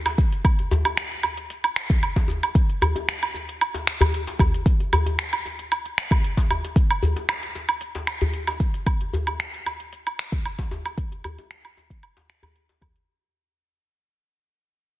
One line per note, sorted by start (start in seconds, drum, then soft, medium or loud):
0.06 djembe slap medium
0.06 cabasa soft
0.06 low woodblock medium
0.18 kick loud
0.18 cabasa medium
0.33 closed hi-hat soft
0.33 cabasa soft
0.45 kick loud
0.45 closed hi-hat medium
0.45 cabasa soft
0.45 low woodblock medium
0.59 closed hi-hat soft
0.59 djembe tone soft
0.59 cabasa soft
0.71 djembe slap soft
0.71 djembe bass medium
0.71 cabasa medium
0.85 closed hi-hat soft
0.85 djembe tone medium
0.85 cabasa soft
0.85 low woodblock medium
0.97 finger snap medium
0.97 closed hi-hat medium
0.97 cabasa soft
1.11 closed hi-hat soft
1.11 cabasa soft
1.23 djembe slap soft
1.23 cabasa medium
1.23 low woodblock medium
1.37 closed hi-hat soft
1.37 cabasa soft
1.50 closed hi-hat medium
1.50 cabasa medium
1.64 closed hi-hat soft
1.64 cabasa soft
1.64 low woodblock medium
1.76 finger snap medium
1.76 cabasa medium
1.90 kick loud
1.90 closed hi-hat soft
1.90 djembe tone medium
1.90 cabasa soft
2.03 closed hi-hat medium
2.03 cabasa soft
2.03 low woodblock medium
2.16 kick medium
2.16 djembe slap medium
2.16 cabasa soft
2.28 djembe tone medium
2.28 cabasa medium
2.43 closed hi-hat soft
2.43 djembe slap soft
2.43 cabasa soft
2.43 low woodblock medium
2.55 kick loud
2.55 closed hi-hat soft
2.55 cabasa soft
2.70 closed hi-hat soft
2.70 cabasa soft
2.82 djembe slap soft
2.82 djembe bass medium
2.82 cabasa medium
2.82 low woodblock medium
2.96 closed hi-hat soft
2.96 djembe tone medium
2.96 cabasa soft
3.09 finger snap medium
3.09 closed hi-hat medium
3.09 cabasa medium
3.23 closed hi-hat soft
3.23 cabasa soft
3.23 low woodblock medium
3.34 djembe slap soft
3.34 cabasa medium
3.49 closed hi-hat soft
3.49 cabasa soft
3.61 closed hi-hat medium
3.61 cabasa soft
3.61 low woodblock medium
3.74 closed hi-hat soft
3.74 djembe slap medium
3.74 cabasa soft
3.87 finger snap medium
3.87 cabasa medium
4.01 closed hi-hat soft
4.01 djembe tone medium
4.01 djembe bass medium
4.01 cabasa soft
4.01 low woodblock medium
4.14 closed hi-hat medium
4.14 cabasa soft
4.27 closed hi-hat soft
4.27 djembe slap medium
4.27 cabasa soft
4.39 kick loud
4.39 djembe bass medium
4.39 cabasa medium
4.39 low woodblock medium
4.54 closed hi-hat soft
4.54 cabasa soft
4.66 kick loud
4.66 closed hi-hat soft
4.66 cabasa soft
4.80 closed hi-hat soft
4.80 djembe tone soft
4.80 cabasa soft
4.93 djembe slap soft
4.93 djembe bass medium
4.93 cabasa medium
4.93 low woodblock medium
5.06 closed hi-hat soft
5.06 djembe tone medium
5.06 cabasa soft
5.19 finger snap medium
5.19 closed hi-hat medium
5.19 cabasa soft
5.33 closed hi-hat soft
5.33 cabasa soft
5.33 low woodblock medium
5.45 djembe slap soft
5.45 cabasa medium
5.59 closed hi-hat soft
5.59 cabasa soft
5.72 closed hi-hat medium
5.72 cabasa soft
5.72 low woodblock medium
5.86 closed hi-hat soft
5.86 cabasa soft
5.98 finger snap medium
5.98 cabasa medium
6.11 kick loud
6.11 closed hi-hat soft
6.11 djembe tone medium
6.11 cabasa soft
6.11 low woodblock medium
6.24 closed hi-hat medium
6.24 cabasa soft
6.37 kick medium
6.37 djembe slap medium
6.37 cabasa soft
6.50 djembe tone medium
6.50 cabasa medium
6.50 low woodblock medium
6.64 closed hi-hat soft
6.64 djembe slap soft
6.64 cabasa soft
6.76 kick loud
6.76 closed hi-hat medium
6.76 cabasa soft
6.91 closed hi-hat soft
6.91 cabasa soft
6.91 low woodblock medium
7.03 djembe slap soft
7.03 djembe bass medium
7.03 cabasa medium
7.16 closed hi-hat soft
7.16 djembe tone medium
7.16 cabasa soft
7.29 finger snap medium
7.29 closed hi-hat medium
7.29 cabasa soft
7.29 low woodblock medium
7.43 closed hi-hat soft
7.43 cabasa soft
7.55 djembe slap soft
7.55 cabasa medium
7.69 closed hi-hat soft
7.69 cabasa soft
7.69 low woodblock medium
7.81 closed hi-hat medium
7.81 cabasa soft
7.95 closed hi-hat soft
7.95 djembe slap medium
7.95 cabasa soft
8.07 finger snap medium
8.07 cabasa medium
8.07 low woodblock medium
8.21 closed hi-hat soft
8.21 djembe tone medium
8.21 djembe bass medium
8.21 cabasa soft
8.34 closed hi-hat medium
8.34 cabasa soft
8.47 djembe slap medium
8.47 cabasa soft
8.47 low woodblock medium
8.60 kick loud
8.60 cabasa medium
8.74 closed hi-hat soft
8.74 cabasa soft
8.86 kick loud
8.86 closed hi-hat medium
8.86 cabasa soft
8.86 low woodblock medium
9.01 closed hi-hat soft
9.01 djembe tone soft
9.01 cabasa soft
9.13 djembe slap soft
9.13 djembe bass medium
9.13 cabasa medium
9.27 closed hi-hat soft
9.27 djembe tone medium
9.27 cabasa soft
9.27 low woodblock medium
9.40 finger snap medium
9.40 closed hi-hat medium
9.40 cabasa soft
9.54 closed hi-hat soft
9.54 cabasa soft
9.66 djembe slap soft
9.66 cabasa medium
9.66 low woodblock medium
9.80 closed hi-hat soft
9.80 cabasa soft
9.93 closed hi-hat medium
9.93 cabasa soft
10.07 closed hi-hat soft
10.07 cabasa soft
10.07 low woodblock medium
10.19 finger snap medium
10.19 cabasa medium
10.32 kick loud
10.32 closed hi-hat medium
10.32 djembe tone medium
10.32 cabasa soft
10.45 closed hi-hat medium
10.45 cabasa soft
10.45 low woodblock medium
10.59 kick medium
10.59 djembe slap medium
10.59 cabasa soft
10.71 djembe tone medium
10.71 cabasa medium
10.85 closed hi-hat soft
10.85 djembe slap soft
10.85 cabasa soft
10.85 low woodblock medium
10.98 kick loud
10.98 closed hi-hat medium
10.98 cabasa soft
11.12 closed hi-hat soft
11.12 djembe tone soft
11.12 cabasa soft
11.24 djembe slap soft
11.24 djembe bass medium
11.24 cabasa medium
11.24 low woodblock medium
11.39 closed hi-hat soft
11.39 djembe tone medium
11.39 cabasa soft
11.51 finger snap medium
11.51 closed hi-hat medium
11.51 cabasa soft
11.65 closed hi-hat soft
11.65 cabasa soft
11.65 low woodblock medium
11.77 djembe slap soft
11.77 cabasa medium
11.90 kick medium
11.90 closed hi-hat medium
11.90 cabasa soft
12.03 closed hi-hat medium
12.03 cabasa soft
12.03 low woodblock medium
12.17 closed hi-hat soft
12.17 djembe slap medium
12.17 cabasa soft
12.29 finger snap medium
12.29 djembe slap soft
12.29 cabasa medium
12.43 closed hi-hat medium
12.43 djembe tone medium
12.43 djembe bass medium
12.43 cabasa soft
12.43 low woodblock medium
12.56 closed hi-hat medium
12.56 cabasa soft
12.69 closed hi-hat soft
12.69 djembe slap medium
12.69 cabasa soft
12.81 kick loud
12.81 djembe bass medium
12.81 cabasa medium
12.81 low woodblock medium
12.96 closed hi-hat soft
12.96 cabasa soft